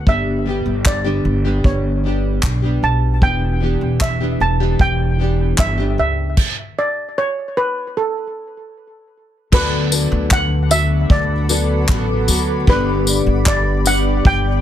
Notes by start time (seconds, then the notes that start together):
0.07 G1 G3 B3 D4 G4 E5, kick
0.46 G3 B3 D4 G4
0.66 G1
0.86 D5, kick, clap
1.04 G2 D3 G3 B3 D4 G4
1.25 G1
1.45 G2 D3 G3 B3 D4 G4
1.64 G1 C#5, kick
2.04 G3 B3 D4 G4
2.43 B1, kick, clap
2.62 G3 B3 D4 G4
2.83 B1 A5
3.21 E1 E3 B3 D4 G4 G5, kick
3.60 E3 B3 D4 G4
3.81 E1
4.01 E5, kick, clap
4.21 E3 B3 D4 G4
4.40 E1 A5
4.60 E3 B3 D4 G4
4.79 E1 G5, kick
5.18 E3 B3 D4 G4
5.58 G1 E5, kick, clap
5.78 B3 D4 G4
5.98 C#2 E5
6.37 kick, crash
6.79 D5
7.18 C#5
7.57 B4
7.97 A4
9.52 D2 D3 F#3 B3 F#4 A4 B4 D5 F#5 B5 D6, kick, crash
9.91 B3 F#4 A4 D5, tambourine
10.12 D2
10.31 F#5, kick, clap
10.69 F#3 B3 F#4 A4 E5, tambourine
11.10 D2 D5, kick
11.49 F#3 B3 F#4 A4 D5, tambourine
11.88 A1 F#3 B3 F#4 A4, kick, clap
12.28 D2 F#3 B3 F#4 A4, tambourine
12.67 G1 G2 D3 G3 B3 D4 G4 B4 D5, kick
13.06 B3 D4 G4 D5, tambourine
13.27 G1
13.46 D5, kick, clap
13.85 G3 B3 D4 G4 F#5, tambourine
14.25 G1 G5, kick